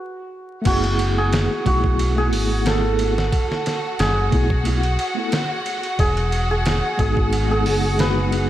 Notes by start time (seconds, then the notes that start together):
Already playing: F#4
0.62 A3 B3 F#4, kick, crash, ride
0.66 F#1 E4 F#4 F#5
0.71 G#4
0.84 ride
0.99 ride
1.18 G#4
1.33 snare, ride
1.64 B1 A3 B3 E4 F#4, kick, ride
1.69 G#4
1.84 kick
1.99 ride
2.16 A3 B3 E4 G#4
2.21 G#4
2.33 G#1, open hi-hat
2.65 A3 B3 E4 A4, snare, ride
2.70 G#4
2.98 A3 B3 E4, ride
3.03 G#4
3.18 snare
3.32 kick, ride
3.52 snare
3.66 snare, ride
3.99 F#1 G#4, snare, ride
4.30 B1 A3 B3 E4, kick, ride
4.35 G#4
4.50 kick
4.64 A3 B3 E4, ride
4.68 F#4
4.83 ride
4.99 ride
5.15 A3 B3 E4
5.20 A4
5.32 snare, ride
5.66 ride
5.83 ride
5.99 E1 G#4, kick, ride
6.17 ride
6.32 ride
6.51 G#4
6.66 snare, ride
6.97 G#1 G#3 B3 D#4 G#4, kick, ride
7.02 F#4
7.17 kick
7.33 ride
7.49 G#3 B3 D#4 G#4
7.53 G#4
7.66 F#1, open hi-hat
7.97 G#3 B3 D#4 B4, snare, ride
8.03 F#4
8.30 G#3 B3 D#4, ride
8.36 F#4